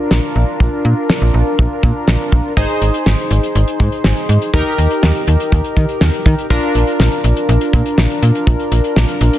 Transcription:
0.00 2.53 D4 medium
0.00 2.53 F4 medium
0.00 2.53 A#4 medium
0.11 0.20 A#1 loud
0.11 snare loud
0.36 0.44 A#1 medium
0.60 0.69 A#1 medium
0.60 kick loud
0.85 0.94 A#2 loud
1.10 snare loud
1.22 1.31 A#1 medium
1.34 1.43 A#1 loud
1.59 1.68 A#1 loud
1.59 kick medium
1.83 1.92 A#2 loud
1.83 kick medium
2.08 2.17 A#1 loud
2.08 snare loud
2.32 2.41 A#1 medium
2.32 kick medium
2.57 2.66 G#1 loud
2.57 4.50 D#4 medium
2.57 4.50 G#4 medium
2.57 4.50 C5 medium
2.57 kick loud
2.57 closed hi-hat medium
2.69 closed hi-hat soft
2.82 2.90 G#1 medium
2.82 closed hi-hat medium
2.94 closed hi-hat medium
3.06 3.15 G#1 loud
3.06 snare loud
3.18 closed hi-hat soft
3.31 3.40 G#1 loud
3.31 closed hi-hat medium
3.43 closed hi-hat medium
3.55 3.64 G#1 loud
3.55 closed hi-hat medium
3.68 closed hi-hat soft
3.80 3.89 G#2 loud
3.80 kick loud
3.80 closed hi-hat medium
3.92 closed hi-hat medium
4.04 4.13 G#1 loud
4.04 snare loud
4.17 closed hi-hat soft
4.29 4.38 G#2 loud
4.29 closed hi-hat medium
4.42 closed hi-hat soft
4.54 4.63 D#2 loud
4.54 6.46 D#4 medium
4.54 6.46 G4 medium
4.54 6.46 A#4 medium
4.54 kick loud
4.54 closed hi-hat medium
4.66 closed hi-hat soft
4.78 4.87 D#2 loud
4.78 closed hi-hat medium
4.91 closed hi-hat soft
5.03 5.12 D#2 loud
5.03 snare loud
5.15 closed hi-hat soft
5.27 5.36 D#2 loud
5.27 closed hi-hat medium
5.40 closed hi-hat medium
5.52 5.61 D#2 loud
5.52 kick medium
5.52 closed hi-hat medium
5.64 closed hi-hat soft
5.77 5.85 D#3 loud
5.77 kick loud
5.77 closed hi-hat medium
5.89 closed hi-hat medium
6.01 6.10 D#2 loud
6.01 snare loud
6.13 closed hi-hat soft
6.26 6.35 D#3 loud
6.26 kick medium
6.26 closed hi-hat medium
6.38 closed hi-hat soft
6.50 6.59 A#1 loud
6.50 9.39 D4 medium
6.50 9.39 F4 medium
6.50 9.39 A#4 medium
6.50 kick loud
6.50 closed hi-hat medium
6.63 closed hi-hat soft
6.75 6.84 A#1 medium
6.75 closed hi-hat medium
6.87 closed hi-hat medium
7.00 7.08 A#1 loud
7.00 snare loud
7.12 closed hi-hat medium
7.24 7.33 A#1 loud
7.24 closed hi-hat medium
7.37 closed hi-hat medium
7.49 7.58 A#1 loud
7.49 closed hi-hat medium
7.61 closed hi-hat medium
7.73 7.82 A#2 loud
7.73 kick loud
7.73 closed hi-hat medium
7.86 closed hi-hat medium
7.98 8.07 A#1 loud
7.98 snare loud
8.10 closed hi-hat soft
8.22 8.31 A#2 medium
8.22 closed hi-hat medium
8.35 closed hi-hat soft
8.47 8.56 A#1 loud
8.47 kick loud
8.47 closed hi-hat medium
8.59 closed hi-hat soft
8.72 8.81 A#1 medium
8.72 closed hi-hat medium
8.84 closed hi-hat medium
8.96 9.05 A#1 loud
8.96 snare loud
9.08 closed hi-hat medium
9.21 9.30 A#1 loud
9.21 closed hi-hat medium
9.33 closed hi-hat medium

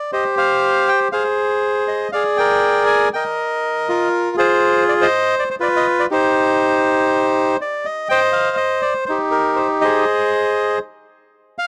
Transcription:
0.00 0.11 D5 medium
0.13 1.09 G4 medium
0.13 0.35 C5 medium
0.13 0.24 D#5 medium
0.37 1.08 C5 medium
0.37 0.89 F5 medium
0.89 1.00 G5 medium
1.12 2.08 G#4 medium
1.12 2.08 C5 medium
1.12 1.23 F5 medium
1.88 2.11 D#5 medium
2.12 3.08 G#4 medium
2.12 2.38 D5 medium
2.12 2.23 F5 medium
2.37 3.09 A#4 medium
2.37 3.08 D5 medium
2.37 2.83 G5 medium
2.87 3.10 G#5 loud
3.13 3.88 A#4 medium
3.13 4.08 D#5 medium
3.13 3.24 G5 medium
3.89 4.36 F4 medium
3.89 4.34 A#4 medium
4.37 5.07 F4 medium
4.37 5.07 G#4 medium
4.37 4.84 C5 medium
4.89 4.93 D5 medium
5.01 5.49 C5 medium
5.01 5.35 D#5 loud
5.39 5.44 D5 medium
5.51 5.55 C5 medium
5.60 6.06 F4 medium
5.60 6.06 B4 medium
5.60 5.68 D5 medium
5.76 5.87 D#5 medium
6.00 6.05 D5 medium
6.11 7.56 D#4 medium
6.11 7.56 G4 medium
6.11 7.57 C5 medium
7.61 7.86 D5 medium
7.85 8.08 D#5 medium
8.09 9.04 C5 medium
8.09 8.55 D#5 medium
8.09 8.20 G5 loud
8.32 8.57 F5 medium
8.57 8.81 D#5 medium
8.82 8.94 D5 medium
9.06 10.04 D#4 medium
9.06 9.18 C5 medium
9.10 10.05 G4 medium
9.31 9.58 A#4 medium
9.56 9.68 C5 medium
9.81 10.79 G#4 soft
9.81 10.79 C5 medium
9.81 10.77 D#5 medium
11.58 11.67 F5 medium

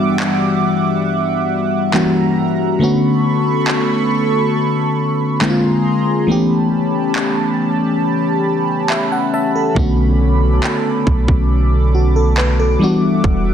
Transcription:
0.00 1.89 E3 medium
0.00 1.89 G3 medium
0.00 1.90 G3 medium
0.00 1.90 B3 medium
0.00 1.90 D4 medium
0.00 1.91 F#4 medium
0.00 2.76 E5 medium
0.00 2.76 F#5 medium
0.00 1.90 D6 medium
0.20 clap loud
1.93 2.80 E3 medium
1.93 2.80 G3 medium
1.93 2.81 G3 medium
1.93 2.81 A#3 medium
1.93 2.81 C#4 medium
1.93 2.81 F#4 medium
1.93 2.79 A#5 medium
1.93 clap loud
2.79 5.37 D3 medium
2.79 5.37 A3 medium
2.79 5.38 B3 medium
2.79 5.38 C#4 medium
2.79 5.39 A4 medium
2.79 5.39 B5 medium
2.79 5.39 C#6 medium
2.84 5.39 F#4 medium
3.68 clap loud
5.41 6.28 D3 medium
5.41 6.28 G#3 medium
5.41 6.29 A#3 medium
5.41 6.29 C4 medium
5.41 5.49 E4 medium
5.41 6.27 G#4 medium
5.41 6.27 A#5 medium
5.41 6.27 C6 medium
5.41 clap loud
5.50 6.33 F4 medium
6.27 8.41 E3 medium
6.27 8.42 A3 medium
6.27 8.42 B3 medium
6.27 12.77 C#4 medium
6.27 8.43 C#4 medium
6.27 9.73 G4 medium
6.27 9.73 A5 medium
6.27 12.77 B5 medium
6.31 8.43 G4 medium
7.16 clap loud
8.90 9.30 E5 medium
8.90 clap loud
9.12 9.32 F#5 medium
9.34 9.54 E5 medium
9.34 9.74 A5 medium
9.56 9.96 A4 medium
9.75 10.60 B1 loud
9.75 12.76 D3 medium
9.75 12.76 A3 medium
9.75 12.77 B3 medium
9.75 12.77 C#4 medium
9.75 12.78 A4 medium
9.75 13.54 D6 loud
9.75 kick loud
9.79 11.91 F#4 medium
10.64 clap loud
11.07 11.28 B1 loud
11.07 kick medium
11.28 12.76 B1 medium
11.28 kick loud
11.95 12.15 F#4 medium
12.16 12.36 A4 medium
12.38 12.58 B4 medium
12.38 clap medium
12.60 13.00 A4 medium
12.79 13.54 E3 medium
12.79 13.54 G3 medium
12.79 13.54 B3 medium
12.79 13.54 D4 medium
12.79 13.54 E5 medium
12.79 13.54 F#5 medium
12.84 13.54 F#4 medium
13.24 13.54 E1 loud
13.24 kick loud

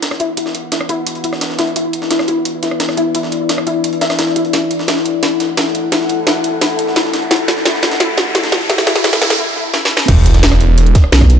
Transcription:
0.00 9.35 E4 medium
0.00 4.49 B4 medium
0.00 1.75 F#5 medium
0.00 snare loud
0.00 closed hi-hat medium
0.00 closed hi-hat loud
0.11 cross-stick soft
0.11 snare soft
0.20 0.27 E4 loud
0.20 closed hi-hat medium
0.37 0.42 E4 medium
0.37 closed hi-hat medium
0.46 snare soft
0.55 closed hi-hat medium
0.72 0.83 E4 medium
0.72 snare loud
0.72 closed hi-hat medium
0.81 cross-stick medium
0.89 1.00 E4 loud
0.89 closed hi-hat medium
1.07 closed hi-hat medium
1.15 closed hi-hat soft
1.24 1.28 E4 medium
1.24 closed hi-hat medium
1.33 cross-stick soft
1.33 snare soft
1.41 snare loud
1.41 closed hi-hat medium
1.50 snare soft
1.59 1.66 E4 loud
1.59 snare loud
1.59 closed hi-hat medium
1.67 closed hi-hat soft
1.76 1.80 E4 medium
1.76 4.52 D5 medium
1.76 closed hi-hat medium
1.93 closed hi-hat medium
2.02 snare medium
2.11 2.21 E4 medium
2.11 snare loud
2.11 closed hi-hat medium
2.19 cross-stick medium
2.19 snare medium
2.28 2.39 E4 loud
2.28 closed hi-hat medium
2.45 closed hi-hat medium
2.63 2.67 E4 medium
2.63 snare soft
2.63 closed hi-hat medium
2.71 cross-stick soft
2.80 snare loud
2.80 closed hi-hat medium
2.89 cross-stick soft
2.89 snare soft
2.97 3.05 E4 loud
2.97 closed hi-hat medium
3.15 3.19 E4 medium
3.15 closed hi-hat medium
3.23 snare soft
3.32 closed hi-hat medium
3.49 3.60 E4 medium
3.49 snare loud
3.49 closed hi-hat medium
3.58 cross-stick medium
3.67 3.78 E4 loud
3.67 closed hi-hat medium
3.84 closed hi-hat medium
3.93 closed hi-hat soft
4.01 4.12 E5 loud
4.01 snare loud
4.01 closed hi-hat medium
4.10 cross-stick soft
4.10 snare loud
4.10 closed hi-hat medium
4.19 4.30 E4 medium
4.19 snare loud
4.19 closed hi-hat medium
4.27 snare soft
4.36 4.43 E4 loud
4.36 closed hi-hat medium
4.45 closed hi-hat soft
4.53 4.58 E4 medium
4.53 9.35 A4 medium
4.53 7.30 F#5 medium
4.53 snare soft
4.53 closed hi-hat medium
4.53 riser medium
4.71 closed hi-hat medium
4.79 snare medium
4.88 4.99 E4 medium
4.88 snare medium
4.88 snare loud
4.88 closed hi-hat medium
4.97 snare medium
5.05 closed hi-hat medium
5.23 5.27 E4 medium
5.23 snare medium
5.23 closed hi-hat medium
5.40 snare soft
5.40 closed hi-hat medium
5.57 5.68 E4 medium
5.57 snare loud
5.57 snare medium
5.57 closed hi-hat medium
5.66 snare soft
5.75 closed hi-hat medium
5.92 5.96 E4 medium
5.92 snare medium
5.92 closed hi-hat medium
6.01 snare soft
6.09 closed hi-hat medium
6.27 6.38 E4 medium
6.27 snare loud
6.27 snare medium
6.27 closed hi-hat medium
6.44 closed hi-hat medium
6.61 6.66 E4 medium
6.61 snare medium
6.61 closed hi-hat medium
6.70 closed hi-hat soft
6.79 closed hi-hat medium
6.87 snare soft
6.96 7.07 E4 medium
6.96 snare loud
6.96 snare medium
6.96 closed hi-hat medium
6.96 closed hi-hat loud
7.05 snare soft
7.13 snare loud
7.13 closed hi-hat medium
7.22 closed hi-hat soft
7.31 7.35 E4 medium
7.31 9.39 A5 medium
7.31 snare medium
7.31 closed hi-hat medium
7.31 closed hi-hat loud
7.48 snare medium
7.48 closed hi-hat medium
7.57 snare medium
7.65 7.70 E4 medium
7.65 snare loud
7.65 snare medium
7.65 closed hi-hat medium
7.65 closed hi-hat loud
7.74 snare medium
7.83 snare loud
7.83 snare medium
7.83 closed hi-hat medium
7.92 snare loud
7.92 closed hi-hat medium
8.00 8.05 E4 medium
8.00 snare medium
8.00 closed hi-hat medium
8.00 closed hi-hat loud
8.18 snare loud
8.18 snare medium
8.18 closed hi-hat medium
8.35 8.39 E4 medium
8.35 snare medium
8.35 closed hi-hat medium
8.35 closed hi-hat loud
8.44 snare loud
8.44 closed hi-hat medium
8.52 snare medium
8.52 closed hi-hat medium
8.61 closed hi-hat medium
8.70 8.74 E4 medium
8.70 snare loud
8.70 closed hi-hat loud
8.70 closed hi-hat medium
8.78 snare soft
8.78 snare medium
8.87 8.91 E4 medium
8.87 snare loud
8.87 closed hi-hat medium
8.96 snare medium
9.04 9.09 E4 medium
9.04 snare loud
9.04 closed hi-hat medium
9.04 closed hi-hat loud
9.13 snare medium
9.22 9.26 E4 medium
9.22 snare loud
9.22 closed hi-hat medium
9.30 snare medium
9.30 snare loud
9.30 closed hi-hat medium
9.39 9.43 E4 medium
9.56 9.61 E4 medium
9.74 9.78 E4 medium
9.74 snare medium
9.85 snare medium
9.91 9.95 E4 medium
9.97 snare loud
10.08 10.42 E1 loud
10.08 11.39 E4 medium
10.08 11.39 B4 medium
10.08 11.39 F#5 medium
10.08 kick loud
10.08 closed hi-hat medium
10.08 closed hi-hat loud
10.08 crash loud
10.08 sub drop medium
10.26 closed hi-hat medium
10.34 snare medium
10.34 closed hi-hat soft
10.43 10.94 E1 loud
10.43 snare loud
10.43 closed hi-hat loud
10.43 closed hi-hat medium
10.52 cross-stick medium
10.52 snare medium
10.60 closed hi-hat medium
10.78 closed hi-hat medium
10.78 closed hi-hat loud
10.86 closed hi-hat soft
10.95 kick loud
10.95 snare soft
10.95 closed hi-hat medium
11.04 cross-stick soft
11.12 11.39 B1 loud
11.12 snare loud
11.12 closed hi-hat medium
11.12 closed hi-hat loud
11.21 kick medium
11.21 cross-stick medium
11.21 snare soft
11.30 closed hi-hat medium

